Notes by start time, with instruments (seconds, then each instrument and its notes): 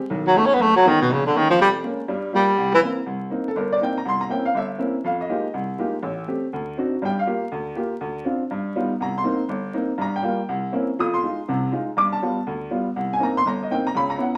0.10 upright piano B1 D#3
0.27 baritone saxophone F#3
0.35 upright piano G#3 A3 B3 C#4 D#4, baritone saxophone A3
0.46 baritone saxophone C#4
0.54 baritone saxophone B3
0.59 upright piano F#1, baritone saxophone A3
0.76 baritone saxophone F#3
0.85 baritone saxophone D#3, upright piano G#3 A3 B3 C#4 D#4
1.02 baritone saxophone B2
1.09 upright piano A#1, baritone saxophone C#3
1.26 baritone saxophone D3
1.34 baritone saxophone D#3, upright piano G#3 A#3 C#4
1.50 baritone saxophone F3
1.59 upright piano F1, baritone saxophone G3
1.84 upright piano G#3 A#3 C#4
2.08 upright piano G2 G3
2.33 upright piano G3 A#3 F4, baritone saxophone G3
2.58 upright piano C2
2.74 baritone saxophone E3
2.82 upright piano A#3 C4 E4
3.06 upright piano C2
3.30 upright piano A#3 C4 D#4
3.48 upright piano A4
3.56 upright piano G1 A#4
3.73 upright piano D5
3.81 upright piano A#3 C4 D#4 G5
3.98 upright piano A#5
4.05 upright piano C2 C6
4.21 upright piano A#5
4.29 upright piano A#3 C4 C#4 E4 G5
4.45 upright piano F5
4.54 upright piano G1 E5
4.78 upright piano A#3 C4 C#4 E4
5.04 upright piano F2 F5
5.21 upright piano D#5
5.29 upright piano G#3 A#3 D#4 F4 G4
5.54 upright piano C2
5.79 upright piano G#3 A#3 D#4 F4 G4
6.03 upright piano A1
6.28 upright piano A3 C4 G4
6.53 upright piano D2
6.78 upright piano C4 D4 D#4 F#4
7.02 upright piano G2 G3 G5
7.19 upright piano F5
7.27 upright piano A#3 F4 G4
7.52 upright piano D2
7.76 upright piano A#3 F4 G4
8.01 upright piano D2
8.25 upright piano C4 D4 F4
8.51 upright piano G2
8.76 upright piano G3 B3 D#4 F4
9.01 upright piano C2 A#5
9.18 upright piano C6
9.24 upright piano A#3 C4 D#4
9.49 upright piano G1
9.74 upright piano A#3 C4 D#4
9.98 upright piano G2 A#5
10.16 upright piano G5
10.23 upright piano G3 A#3 F4
10.49 upright piano C2
10.72 upright piano A#3 C4 C#4 E4
10.99 upright piano F2 F3 D#6
11.14 upright piano C6
11.23 upright piano G#3 D#4 F4
11.48 upright piano C2 C3
11.72 upright piano G#3 D#4 F4
11.97 upright piano G2 D6
12.12 upright piano A5
12.22 upright piano G3 B3 F4
12.47 upright piano D2
12.71 upright piano G3 B3 F4
12.96 upright piano C2
13.13 upright piano G#5
13.20 upright piano A#3 C4 D#4 A#5
13.37 upright piano C6
13.46 upright piano G1 A#5
13.63 upright piano D#5
13.70 upright piano A#3 C4 D#4 G5
13.87 upright piano A#5
13.95 upright piano C#2 C#3 B5
14.10 upright piano A#5
14.18 upright piano B3 C#4 E4 F#5